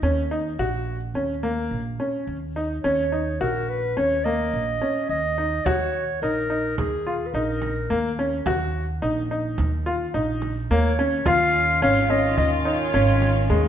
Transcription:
0.02 0.55 D#2 medium
0.02 0.21 C#4 medium
0.31 0.49 D#4 medium
0.59 1.11 A#1 medium
0.59 0.95 F#4 medium
1.14 1.67 D#2 medium
1.14 1.33 C#4 medium
1.43 1.79 A#3 medium
1.71 1.97 A#1 medium
2.00 2.36 C#4 medium
2.27 2.80 D#2 medium
2.56 2.74 D#4 medium
2.83 3.37 D#2 medium
2.83 3.02 C#4 medium
2.83 3.42 C#5 medium
3.12 3.30 D#4 medium
3.41 3.93 A#1 medium
3.41 3.77 F#4 medium
3.41 3.71 A#4 medium
3.69 3.99 B4 medium
3.97 4.49 D#2 medium
3.97 4.15 C#4 medium
3.97 4.26 C#5 medium
4.25 4.61 A#3 medium
4.25 5.09 D#5 medium
4.54 4.79 A#1 medium
4.81 5.17 C#4 medium
5.09 5.62 D#2 medium
5.09 5.67 D#5 medium
5.38 5.56 D#4 medium
5.66 6.18 D#2 medium
5.66 6.02 F#4 medium
5.66 6.21 C#5 medium
5.66 frame drum medium
6.21 6.74 A#1 medium
6.21 6.40 D#4 medium
6.21 6.74 A#4 medium
6.21 frame drum soft
6.50 6.86 D#4 medium
6.78 7.30 D#2 medium
6.78 7.28 G#4 medium
6.78 frame drum soft
7.06 7.24 F4 medium
7.06 frame drum soft
7.26 7.35 B4 soft
7.34 7.86 A#1 medium
7.34 7.70 D#4 medium
7.34 8.18 A#4 medium
7.62 frame drum soft
7.90 8.42 D#2 medium
7.90 8.08 A#3 medium
8.19 8.37 C#4 medium
8.46 8.98 D#2 medium
8.46 8.82 F#4 medium
8.46 frame drum medium
9.02 9.54 A#1 medium
9.02 9.20 D#4 medium
9.02 frame drum soft
9.31 9.67 D#4 medium
9.58 10.11 D#2 medium
9.58 frame drum medium
9.86 10.04 F4 medium
9.86 frame drum soft
10.14 10.66 A#1 medium
10.14 10.50 D#4 medium
10.42 frame drum soft
10.70 11.22 D#2 medium
10.70 10.89 A#3 medium
10.70 11.29 C#5 medium
10.99 11.17 C#4 medium
11.26 11.78 D#2 medium
11.26 13.68 D#3 medium
11.26 13.68 C#4 medium
11.26 11.62 F4 medium
11.26 13.68 F4 medium
11.26 11.82 F5 loud
11.26 frame drum medium
11.82 12.34 G#1 medium
11.82 12.00 C#4 medium
11.82 12.11 F5 medium
11.82 frame drum soft
12.10 12.46 C#4 medium
12.10 12.37 D#5 medium
12.38 12.90 D#2 medium
12.38 12.51 D#5 medium
12.38 frame drum medium
12.65 12.83 D#4 medium
12.65 13.68 C#5 medium
12.65 frame drum soft
12.94 13.46 G#1 medium
12.94 13.30 C#4 medium
13.22 frame drum soft
13.50 13.68 D#2 medium
13.50 13.68 G#3 medium

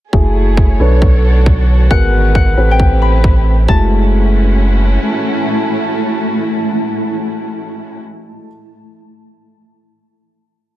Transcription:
0.13 0.78 F#1 medium
0.13 0.78 A3 medium
0.13 0.79 A3 medium
0.13 0.78 E4 medium
0.13 0.79 E4 medium
0.13 0.78 F#4 medium
0.13 0.78 G#4 medium
0.13 0.79 G#4 medium
0.13 1.89 C#5 medium
0.13 kick loud
0.57 kick loud
0.80 1.89 B1 medium
0.80 1.89 D4 medium
0.80 1.90 D4 medium
0.80 2.56 F#4 medium
0.80 1.89 A4 medium
0.80 1.90 A4 medium
0.80 1.89 B4 medium
0.80 1.89 C#5 medium
1.02 kick loud
1.46 kick loud
1.90 2.56 G#1 medium
1.90 2.55 B3 medium
1.90 2.57 B3 medium
1.90 2.57 D#4 medium
1.90 2.55 F#4 medium
1.90 2.55 G#4 medium
1.90 2.57 A#4 medium
1.90 2.55 A#4 medium
1.90 2.35 F#5 medium
1.90 kick loud
2.35 2.77 F#5 medium
2.35 kick loud
2.57 3.67 A1 medium
2.57 3.67 C4 medium
2.57 3.67 E4 medium
2.57 3.67 G4 medium
2.57 3.67 A4 medium
2.57 3.67 B4 medium
2.71 4.27 G5 medium
2.80 kick loud
3.02 4.37 B5 medium
3.24 kick loud
3.68 4.98 F#1 medium
3.68 8.47 G#3 medium
3.68 8.47 A3 medium
3.68 8.00 C#4 medium
3.68 8.00 E4 medium
3.68 8.47 E4 medium
3.68 8.00 F#4 medium
3.68 8.47 F#4 medium
3.68 8.47 A5 medium
3.68 kick loud
3.77 8.00 A3 medium
3.84 8.00 A5 medium

